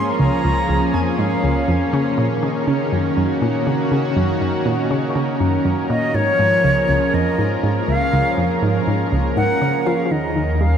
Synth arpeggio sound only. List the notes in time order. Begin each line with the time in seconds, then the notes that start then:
Already playing: G#2
0.19 C#2
0.44 C#2
0.69 C#2
0.94 F2
1.19 G#2
1.44 C#2
1.68 F2
1.93 C#3
2.18 A#2
2.43 C#3
2.67 C#3
2.92 F#2
3.17 F#2
3.42 A#2
3.67 C#3
3.92 C#3
4.16 F#2
4.41 F#2
4.66 A#2
4.91 C#3
5.15 C#3
5.40 F#2
5.65 F#2
5.90 A#2
6.14 G#2
6.39 G#2
6.64 C#2
6.89 C#2
7.14 F2
7.38 G#2
7.63 G#2
7.88 C#2
8.13 C#2
8.38 F2
8.62 G#2
8.87 G#2
9.12 C#2
9.37 G#2
9.62 C#3
9.86 F3
10.11 D#3
10.36 D#3
10.61 G3